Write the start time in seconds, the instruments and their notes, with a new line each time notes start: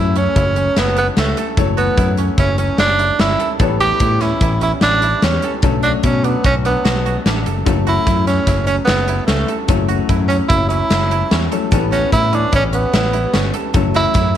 Already playing: fingered electric bass F#2, grand piano E3 F#3 A3 C#4, koto C#4 E4 F#4 A4, tenor saxophone E4
0.15 koto C#4, tenor saxophone C#4, closed hi-hat
0.36 fingered electric bass F#1, koto E4, kick, closed hi-hat
0.56 koto C#4, closed hi-hat
0.76 fingered electric bass F#1, tenor saxophone B3, koto E4, snare, closed hi-hat
0.97 tenor saxophone B3, koto E4, closed hi-hat
1.17 fingered electric bass C#2, tenor saxophone A3, koto C#4, snare, closed hi-hat
1.37 koto A4, closed hi-hat
1.57 fingered electric bass F#1, grand piano E3 F#3 A3 C#5, koto A4, kick, closed hi-hat
1.77 tenor saxophone B3, koto F#4, closed hi-hat
1.97 fingered electric bass F#2, koto E4, kick, closed hi-hat
2.17 koto C#4, closed hi-hat
2.38 fingered electric bass F#1, tenor saxophone C#4, koto E4, kick, closed hi-hat
2.58 koto C#4, tenor saxophone C#4, closed hi-hat
2.78 fingered electric bass F#1, tenor saxophone D4, koto E4, snare, closed hi-hat
2.99 koto E4, closed hi-hat
3.19 fingered electric bass G1, koto C#4, tenor saxophone E4, snare, closed hi-hat
3.39 koto A4, closed hi-hat
3.59 fingered electric bass A1, grand piano E3 G3 B3 C#5, koto A4, kick, closed hi-hat
3.80 koto F#4, tenor saxophone G4, closed hi-hat
4.00 fingered electric bass A2, koto E4, kick, closed hi-hat
4.21 koto C#4, tenor saxophone E4, snare, closed hi-hat
4.41 fingered electric bass A1, koto E4, kick, closed hi-hat
4.61 koto C#4, tenor saxophone E4, closed hi-hat
4.81 fingered electric bass A1, tenor saxophone D4, koto E4, snare, closed hi-hat
5.02 koto E4, closed hi-hat
5.22 fingered electric bass E2, koto C#4, tenor saxophone C#4, snare, closed hi-hat
5.42 koto A4, closed hi-hat
5.62 fingered electric bass B1, grand piano D3 F#3 A3 C#4, koto A4, kick, closed hi-hat
5.83 tenor saxophone D4, koto F#4, closed hi-hat
6.03 fingered electric bass B2, tenor saxophone C#4, koto E4, kick, closed hi-hat
6.24 tenor saxophone B3, koto D4, closed hi-hat
6.44 fingered electric bass B1, tenor saxophone C#4, koto F#4, kick, closed hi-hat
6.65 tenor saxophone B3, koto D4, closed hi-hat
6.84 fingered electric bass B1, koto F#4, snare, closed hi-hat
7.06 koto F#4, closed hi-hat
7.26 fingered electric bass A1, koto D4, snare, closed hi-hat
7.46 fingered electric bass F#1, koto A4, closed hi-hat
7.65 fingered electric bass F#1, grand piano E3 F#3 A3 C#4, koto A4, kick, closed hi-hat, shaker
7.87 tenor saxophone E4, koto F#4, closed hi-hat
8.07 fingered electric bass F#2, koto E4, kick, closed hi-hat
8.26 tenor saxophone C#4, koto C#4, snare, closed hi-hat, shaker
8.47 fingered electric bass F#1, koto E4, kick, snare, closed hi-hat
8.66 tenor saxophone C#4, koto C#4, closed hi-hat, shaker
8.85 fingered electric bass F#1, tenor saxophone B3, koto E4, snare, closed hi-hat, shaker
9.08 koto E4, closed hi-hat
9.26 fingered electric bass C#2, tenor saxophone A3, koto C#4, snare, closed hi-hat
9.48 koto A4, closed hi-hat, shaker
9.68 fingered electric bass F#1, grand piano E3 F#3 A3 C#4, koto A4, kick, closed hi-hat, shaker
9.88 koto F#4, closed hi-hat
10.09 fingered electric bass F#2, koto E4, kick, closed hi-hat
10.28 tenor saxophone C#4, koto C#4, closed hi-hat, shaker
10.48 fingered electric bass F#1, tenor saxophone E4, koto E4, kick, closed hi-hat
10.69 koto C#4, tenor saxophone E4, closed hi-hat, shaker
10.90 fingered electric bass F#1, koto E4, snare, closed hi-hat, shaker
11.11 koto E4, closed hi-hat
11.31 fingered electric bass E2, koto C#4, snare, closed hi-hat
11.52 grand piano E3 F#3 A3 C#4, koto A4, closed hi-hat, shaker
11.71 fingered electric bass A1, grand piano E3 G3 B3 C#4, koto A4, kick, closed hi-hat, shaker
11.92 tenor saxophone C#4, koto F#4, snare, closed hi-hat
12.12 fingered electric bass A2, koto E4, tenor saxophone E4, kick, closed hi-hat
12.33 koto C#4, tenor saxophone D4, closed hi-hat, shaker
12.52 fingered electric bass A1, tenor saxophone C#4, koto E4, kick, closed hi-hat
12.73 tenor saxophone B3, koto C#4, closed hi-hat, shaker
12.93 fingered electric bass A1, koto E4, snare, closed hi-hat, shaker
13.13 koto E4, closed hi-hat
13.34 fingered electric bass G1, koto C#4, snare, closed hi-hat
13.54 koto A4, closed hi-hat, shaker
13.74 fingered electric bass F#1, grand piano E3 F#3 A3 C#4, koto A4, kick, closed hi-hat, shaker
13.94 tenor saxophone E4, koto F#4, snare, closed hi-hat
14.14 fingered electric bass F#2, koto E4, kick, snare, closed hi-hat